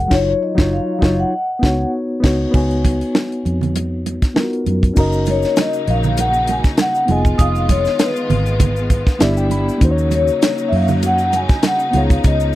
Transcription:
Already playing: F1 G#3 F#4 G#4 A#4
0.08 F#1 F#3 D#4 C#5, kick, snare, crash
0.13 F4 C#5
0.43 D#5
0.55 F#1 F#3 D#4, kick, snare
0.59 F4 C#5
0.73 F5
0.99 F#1 F#3 D#4, kick, snare
1.03 F4 C#5
1.19 F#5
1.33 D#5
1.59 C#2 B3 D#4, kick
1.64 F#4 C#5, snare
2.20 C#2 B3 D#4, kick, crash
2.24 F#4 C#5, snare
2.51 C#2 B3 D#4 G#5, kick, crash
2.55 F#4 C#5
2.71 closed hi-hat
2.85 kick, closed hi-hat, muted conga
3.01 closed hi-hat
3.15 snare, high conga
3.32 closed hi-hat
3.45 F2, closed hi-hat, muted conga
3.61 closed hi-hat, low conga
3.76 closed hi-hat, muted conga
4.06 closed hi-hat, muted conga
4.22 kick, snare, closed hi-hat
4.35 B3 D#4 F4 A#4, snare, high conga
4.43 F#4
4.53 closed hi-hat
4.66 F#2, closed hi-hat, high conga
4.83 kick, closed hi-hat
4.94 F#1 C#3 F#3 A#3 C#4 D#4 F#4, kick, crash, shaker
4.98 A#4 D#5 A#5
5.13 shaker
5.26 closed hi-hat, muted conga, shaker
5.30 C#5
5.42 snare, shaker
5.56 snare, closed hi-hat, high conga, shaker
5.61 D#5
5.73 shaker
5.87 A#1 F5, closed hi-hat, muted conga
6.03 low conga, shaker
6.17 F#5, closed hi-hat, muted conga, shaker
6.34 shaker
6.47 G#5, closed hi-hat, muted conga, shaker
6.64 kick, snare, shaker
6.77 F#5, snare, closed hi-hat, high conga, shaker
6.95 shaker
7.05 F1 D#3 G#3 B3 D#4 F4, closed hi-hat, high conga
7.10 G#4 D#5 G#5
7.25 kick, shaker
7.38 F1 F5 D#6, kick, closed hi-hat, shaker
7.56 shaker
7.69 C#5, kick, closed hi-hat, muted conga, shaker
7.85 snare, shaker
7.99 B4, snare, closed hi-hat, high conga, shaker
8.16 shaker
8.30 G#1, closed hi-hat, muted conga, low conga
8.46 shaker
8.60 kick, closed hi-hat, muted conga, low conga, shaker
8.76 shaker
8.90 kick, closed hi-hat, muted conga, shaker
9.07 kick, snare, shaker
9.19 G1 D3 G3 B3 D4 E4 G4 D5 E5, snare, closed hi-hat, high conga, shaker
9.37 G5, shaker
9.50 B5, closed hi-hat, high conga
9.69 shaker
9.78 D#2 C#3 F#3 A#3 C#4 D#4, kick, closed hi-hat, shaker
9.83 F#4 C5
9.91 C#5
9.98 shaker
10.11 closed hi-hat, muted conga, shaker
10.15 C#5
10.28 shaker
10.42 snare, closed hi-hat, high conga, shaker
10.58 shaker
10.68 F#2 E5
10.73 F5, open hi-hat, muted conga
10.88 low conga, shaker
11.03 F#5, closed hi-hat, muted conga, shaker
11.18 shaker
11.33 G#5, closed hi-hat, muted conga, shaker
11.49 kick, snare, shaker
11.63 snare, closed hi-hat, high conga, shaker
11.67 F#5
11.79 shaker
11.91 C#2 F3 B3 D#4 F4, closed hi-hat, high conga
11.96 G#4 C#5 F5
12.10 kick, closed hi-hat, shaker
12.24 C#2 D#5, kick, closed hi-hat, shaker
12.40 shaker

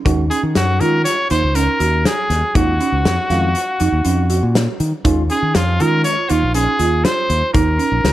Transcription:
0.05 D#2 D#3 G#3 C#4 D#4 F#4, kick, closed hi-hat
0.30 C#4 G#4, closed hi-hat
0.43 D#3
0.55 F#2 F#4, snare, closed hi-hat
0.80 D#3 G#3 C#4 F4 A#4, closed hi-hat
1.04 C#5, snare, closed hi-hat
1.30 D#2 D#4 C5, closed hi-hat
1.43 C#2
1.55 C#4 A#4, closed hi-hat
1.80 D#2 F#4, closed hi-hat
2.05 G#4, snare, closed hi-hat
2.30 D#2, snare, closed hi-hat
2.55 D#2 D#3 G#3 C#4 D#4 F4 F#4, kick, closed hi-hat
2.80 C#4, closed hi-hat
2.92 C#2
3.05 F2, snare, closed hi-hat
3.30 F2 D#3 G#3 C#4 F4 F5, snare, closed hi-hat
3.55 closed hi-hat
3.80 F2 D#4, closed hi-hat
3.92 D#2
4.05 F2 C#4, closed hi-hat
4.30 F#4, closed hi-hat
4.43 A#2
4.55 snare, closed hi-hat
4.80 D#3, closed hi-hat
5.04 D#2 D#3 G#3 C#4 D#4 F4, kick, closed hi-hat
5.30 C#4 G#4, closed hi-hat
5.42 D#3
5.55 F2 F4, snare, closed hi-hat
5.80 D#3 G#3 C#4 F4 A#4, closed hi-hat
6.04 C#5, closed hi-hat
6.29 D#2 D#4 F4, closed hi-hat
6.43 A#1
6.54 C#4 G#4, closed hi-hat
6.79 D#2 F4, closed hi-hat
7.04 C5, snare, closed hi-hat
7.30 D#2, closed hi-hat
7.53 D#2 D#4 A#4, kick, closed hi-hat
7.78 C#4, closed hi-hat
7.92 A#1
8.04 C#2 D#3 G#3 C#4 F4, snare, closed hi-hat

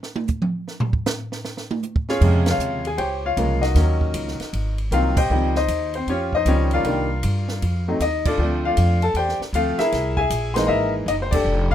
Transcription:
0.03 snare
0.16 high tom
0.28 kick, hi-hat pedal
0.42 mid tom
0.68 snare
0.80 floor tom
0.93 kick
1.06 snare, hi-hat pedal
1.32 snare
1.45 snare
1.57 snare
1.71 high tom
1.83 hi-hat pedal, high tom
1.96 kick
2.09 C#4 F4 G#4 C#5, snare
2.21 F2 C3 C#3 F3 G#3, kick, crash
2.46 F4 C#5, snare, ride
2.50 F5
2.58 D#2, hi-hat pedal
2.85 G#4 G#5, ride
2.97 C#2 G4 C5 C#5 G5, ride
3.25 F4 C#5 F5
3.37 C2 C#3 F3 G#3 A#3, hi-hat pedal, ride
3.61 D#4 F#4 A#4 D#5, snare, ride
3.75 D#2 D#3 F#3 A#3 C#4, snare, ride
4.01 kick
4.14 C#2, hi-hat pedal, ride
4.28 snare
4.40 muted upright bass stroke, snare, ride
4.53 G#1, ride
4.78 ride
4.91 C2 D#3 F#3 A#3 C4 F4 F5, hi-hat pedal, ride
5.17 G4 C5 D#5 G5, kick, crash
5.30 C#2 D#3 F3 G3 C4
5.55 D#4 C5 D#5, snare
5.68 D#2, hi-hat pedal, ride
5.94 C4 C5, ride
6.07 F2 C#4 F4 G4 C#5, ride
6.33 D#4 C5 D#5, kick
6.45 C#2 D#3 F3 G3 C#4, hi-hat pedal, ride
6.71 F4 A#4 F5, ride
6.75 D5
6.83 C2 D#3 G3 A#3 D4, ride
7.23 G2, hi-hat pedal, ride
7.48 snare
7.62 F2, ride
7.88 F#3 A3 C4 D#4
8.00 D#2 D#4 D#5, hi-hat pedal, ride
8.25 D4 F4 A4 D5, kick, crash
8.38 D2 F3 A3 C4 D4
8.65 F4 D5 F5
8.77 F2, hi-hat pedal, ride
9.02 A4 A5, ride
9.14 E2 G4 D5 G5, ride
9.18 C5
9.29 snare
9.40 muted upright bass stroke, snare
9.53 D2 F3 A3 C4 F4 F5, hi-hat pedal, ride
9.78 E4 G#4 A#4 E5, muted upright bass stroke, snare, ride
9.92 C2, snare, ride
10.17 G#4 E5 G#5, kick
10.30 A#1, hi-hat pedal, ride
10.54 E3 G#3 A#3 D#4 C5 C6, snare, ride
10.67 G#1 A#4 D#5 E5 A#5
11.06 F#1 D#5, hi-hat pedal, ride
11.11 D#4
11.22 C5
11.31 D4 G4 A4 D5, kick, crash
11.45 F1
11.71 F5, kick

